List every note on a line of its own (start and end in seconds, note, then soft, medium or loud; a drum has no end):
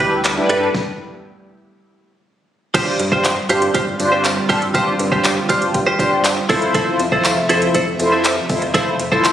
0.00 0.40 D2 medium
0.00 0.70 D3 medium
0.00 0.48 G3 medium
0.00 0.72 B3 medium
0.00 0.13 D4 medium
0.00 0.20 D4 medium
0.00 0.20 E4 medium
0.00 0.48 E4 medium
0.00 0.11 G4 medium
0.00 0.20 G4 medium
0.00 0.20 B4 loud
0.00 0.11 B4 medium
0.00 closed hi-hat medium
0.12 muted clean electric guitar stroke soft
0.24 muted clean electric guitar stroke soft
0.24 clap loud
0.24 closed hi-hat medium
0.37 0.48 D4 medium
0.37 0.50 E4 medium
0.37 0.48 G4 medium
0.37 0.49 B4 loud
0.37 muted clean electric guitar stroke soft
0.49 0.70 G2 medium
0.49 0.74 A3 medium
0.49 0.62 D4 medium
0.49 0.69 D4 loud
0.49 0.70 G4 medium
0.49 0.74 G4 medium
0.49 0.70 A4 medium
0.49 0.61 A4 medium
0.49 0.70 B4 loud
0.49 0.61 B4 medium
0.49 closed hi-hat medium
0.62 0.73 D4 medium
0.62 0.73 A4 medium
0.62 0.73 B4 medium
0.75 kick loud
0.75 snare medium
2.74 6.46 D3 medium
2.74 6.46 G3 medium
2.74 6.46 C4 medium
2.74 2.95 D4 medium
2.74 2.88 F4 medium
2.74 2.95 F4 medium
2.74 6.46 F4 medium
2.74 2.95 G4 medium
2.74 2.86 G4 medium
2.74 2.95 C5 loud
2.74 2.86 C5 medium
2.74 kick loud
2.74 closed hi-hat medium
2.74 crash loud
2.74 tambourine medium
2.87 muted clean electric guitar stroke soft
2.99 3.40 G2 medium
2.99 muted clean electric guitar stroke soft
2.99 closed hi-hat medium
3.12 3.32 D4 medium
3.12 3.32 F4 medium
3.12 3.23 F4 medium
3.12 3.33 G4 medium
3.12 3.23 G4 medium
3.12 3.23 C5 medium
3.12 3.33 C5 loud
3.12 kick medium
3.24 muted clean electric guitar stroke soft
3.24 clap loud
3.24 closed hi-hat medium
3.24 tambourine loud
3.37 muted clean electric guitar stroke soft
3.49 3.70 G2 medium
3.49 3.77 D4 medium
3.49 3.64 F4 medium
3.49 3.77 F4 medium
3.49 3.77 G4 medium
3.49 3.62 G4 medium
3.49 3.77 C5 loud
3.49 3.61 C5 medium
3.49 closed hi-hat medium
3.49 tambourine medium
3.62 muted clean electric guitar stroke soft
3.62 closed hi-hat medium
3.74 3.95 G2 medium
3.74 3.88 F4 medium
3.74 3.86 G4 medium
3.74 3.86 C5 loud
3.74 kick medium
3.74 closed hi-hat loud
3.74 tambourine soft
3.87 muted clean electric guitar stroke soft
3.99 4.40 G2 medium
3.99 4.27 D4 medium
3.99 4.27 F4 medium
3.99 4.27 G4 medium
3.99 4.27 C5 loud
3.99 muted clean electric guitar stroke soft
3.99 closed hi-hat medium
3.99 tambourine soft
4.12 4.23 F4 medium
4.12 4.23 G4 medium
4.12 4.23 C5 medium
4.24 muted clean electric guitar stroke soft
4.24 clap loud
4.24 closed hi-hat medium
4.24 tambourine medium
4.37 muted clean electric guitar stroke medium
4.49 4.90 G2 medium
4.49 4.63 D4 medium
4.49 4.63 F4 medium
4.49 4.63 G4 medium
4.49 4.61 G4 loud
4.49 4.63 A4 loud
4.49 4.61 C5 medium
4.49 kick medium
4.49 open hi-hat medium
4.49 tambourine medium
4.62 muted clean electric guitar stroke medium
4.62 closed hi-hat soft
4.74 4.95 D4 medium
4.74 4.88 F4 medium
4.74 4.95 F4 medium
4.74 4.95 G4 medium
4.74 4.86 G4 medium
4.74 4.95 C5 medium
4.74 4.86 C5 medium
4.74 kick loud
4.74 closed hi-hat medium
4.74 tambourine soft
4.87 muted clean electric guitar stroke soft
4.99 5.40 G2 medium
4.99 muted clean electric guitar stroke soft
4.99 closed hi-hat medium
4.99 tambourine soft
5.12 5.32 D4 medium
5.12 5.32 F4 medium
5.12 5.23 F4 soft
5.12 5.32 G4 medium
5.12 5.23 G4 medium
5.12 5.23 C5 medium
5.12 5.33 C5 loud
5.12 kick loud
5.24 muted clean electric guitar stroke soft
5.24 clap loud
5.24 closed hi-hat medium
5.24 tambourine medium
5.37 muted clean electric guitar stroke medium
5.49 5.70 G2 loud
5.49 5.77 D4 medium
5.49 5.63 F4 medium
5.49 5.77 F4 medium
5.49 5.77 G4 medium
5.49 5.61 G4 medium
5.49 5.77 C5 loud
5.49 5.61 C5 medium
5.49 kick medium
5.49 closed hi-hat medium
5.49 tambourine medium
5.62 muted clean electric guitar stroke medium
5.62 closed hi-hat medium
5.74 5.95 G2 loud
5.74 muted clean electric guitar stroke soft
5.74 kick medium
5.74 closed hi-hat medium
5.74 tambourine soft
5.87 5.98 F4 medium
5.87 5.99 G4 medium
5.87 5.99 C5 medium
5.99 6.40 G2 medium
5.99 6.27 D4 medium
5.99 6.10 F4 medium
5.99 6.27 F4 medium
5.99 6.27 G4 medium
5.99 6.11 G4 medium
5.99 6.27 C5 loud
5.99 6.11 C5 medium
5.99 kick medium
5.99 closed hi-hat medium
5.99 tambourine soft
6.12 muted clean electric guitar stroke soft
6.24 muted clean electric guitar stroke soft
6.24 clap loud
6.24 closed hi-hat medium
6.24 tambourine medium
6.37 muted clean electric guitar stroke soft
6.49 6.90 F2 medium
6.49 9.32 C3 medium
6.49 9.32 F3 medium
6.49 9.32 A3 medium
6.49 6.63 E4 medium
6.49 6.99 E4 loud
6.49 7.00 F4 medium
6.49 7.00 A4 medium
6.49 6.61 A4 medium
6.49 7.00 C5 loud
6.49 6.61 C5 medium
6.49 9.32 E5 medium
6.49 kick medium
6.49 open hi-hat medium
6.49 tambourine medium
6.62 muted clean electric guitar stroke soft
6.62 closed hi-hat soft
6.74 6.88 E4 medium
6.74 6.86 A4 loud
6.74 6.86 C5 loud
6.74 kick loud
6.74 closed hi-hat medium
6.74 tambourine soft
6.87 muted clean electric guitar stroke soft
6.99 7.40 F2 loud
6.99 muted clean electric guitar stroke soft
6.99 closed hi-hat medium
6.99 tambourine soft
7.12 7.32 E4 medium
7.12 7.23 E4 medium
7.12 7.32 F4 medium
7.12 7.33 A4 medium
7.12 7.23 A4 medium
7.12 7.23 C5 medium
7.12 7.33 C5 medium
7.12 kick medium
7.24 muted clean electric guitar stroke soft
7.24 clap loud
7.24 closed hi-hat medium
7.24 tambourine loud
7.37 muted clean electric guitar stroke soft
7.49 7.70 F2 medium
7.49 7.64 E4 medium
7.49 7.77 E4 medium
7.49 7.77 F4 medium
7.49 7.77 A4 medium
7.49 7.62 A4 medium
7.49 7.77 C5 medium
7.49 7.61 C5 medium
7.49 closed hi-hat medium
7.49 tambourine medium
7.62 muted clean electric guitar stroke medium
7.62 closed hi-hat medium
7.74 7.95 F2 loud
7.74 7.89 E4 medium
7.74 7.87 A4 medium
7.74 7.86 C5 medium
7.74 kick medium
7.74 closed hi-hat loud
7.74 tambourine soft
7.87 muted clean electric guitar stroke medium
7.99 8.40 F2 medium
7.99 8.27 E4 medium
7.99 8.27 F4 medium
7.99 8.27 A4 medium
7.99 8.27 C5 loud
7.99 muted clean electric guitar stroke soft
7.99 closed hi-hat medium
7.99 tambourine soft
8.12 8.23 E4 medium
8.12 8.23 A4 medium
8.12 8.23 C5 medium
8.24 muted clean electric guitar stroke soft
8.24 clap loud
8.24 closed hi-hat loud
8.24 tambourine medium
8.37 muted clean electric guitar stroke soft
8.49 8.90 F2 medium
8.49 8.63 E4 medium
8.49 8.63 F4 medium
8.49 8.63 A4 medium
8.49 8.63 C5 loud
8.49 kick medium
8.49 open hi-hat medium
8.49 tambourine medium
8.62 muted clean electric guitar stroke soft
8.62 closed hi-hat soft
8.74 8.88 E4 medium
8.74 8.95 E4 medium
8.74 8.95 F4 medium
8.74 8.95 A4 medium
8.74 8.86 A4 medium
8.74 8.95 C5 loud
8.74 8.86 C5 medium
8.74 kick loud
8.74 closed hi-hat medium
8.74 tambourine soft
8.87 muted clean electric guitar stroke soft
8.99 9.32 F2 medium
8.99 muted clean electric guitar stroke soft
8.99 closed hi-hat medium
8.99 tambourine soft
9.12 9.32 E4 medium
9.12 9.23 E4 medium
9.12 9.32 F4 medium
9.12 9.32 A4 medium
9.12 9.23 A4 medium
9.12 9.23 C5 medium
9.12 9.32 C5 loud
9.12 kick medium
9.24 muted clean electric guitar stroke soft
9.24 clap loud
9.24 closed hi-hat medium
9.24 tambourine loud